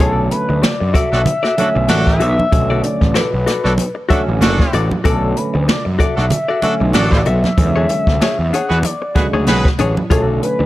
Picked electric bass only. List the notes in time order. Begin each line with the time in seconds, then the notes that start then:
0.00 B1
0.50 D2
0.81 F#2
1.13 B1
1.58 muted picked electric bass stroke
1.76 B1
1.90 A1
2.21 B1
2.53 B1
3.02 A1
3.34 B1
3.65 B1
4.11 muted picked electric bass stroke
4.28 A1
4.42 F#1
4.74 A1
5.05 B1
5.55 D2
5.86 F#2
6.18 B1
6.63 muted picked electric bass stroke
6.81 B1
6.95 A1
7.27 B1
7.58 E2
8.07 D2
8.39 E2
8.71 E2
9.16 muted picked electric bass stroke
9.33 D2
9.47 B1
9.79 A1
10.11 B1
10.60 D2